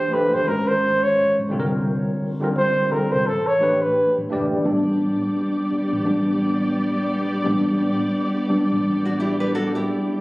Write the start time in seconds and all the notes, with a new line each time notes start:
Already playing: E3 A3 D4 G4 C5
0.09 E3 A3 D4 G4 B4
0.14 A4, muted fingered electric bass stroke
0.34 G1 C5
0.45 D#3 G#3 C#4 F#4 A#4
0.49 G#1
0.68 C5
1.03 C#5
1.19 muted fingered electric bass stroke
1.39 G#1
1.49 D3 G3 C4 F4
1.53 C2 A4
1.60 A#4
2.40 D3 G3 C4 F4 A#4
2.57 C5
2.89 D3 G3 C4 F4 A4 A#4, muted fingered electric bass stroke
3.12 C2 C5
3.26 A1 A4
3.47 C#5
3.59 E3 A3 D4 G4 B4
3.82 B4
4.18 A1
4.29 F#1 E3 A3 D4 G4
4.33 D5
4.53 G1
4.65 A1 G3 B3 D4 G4 D5
5.72 muted fingered electric bass stroke
5.93 A1
6.05 G3 B3 D4
7.44 A1 G3 B3 D4
8.49 G3 B3 D4, muted fingered electric bass stroke
8.72 A1
9.05 D4 F#4
9.20 E4 G4
9.40 G4 B4
9.55 F#4 A4
9.75 E4 G4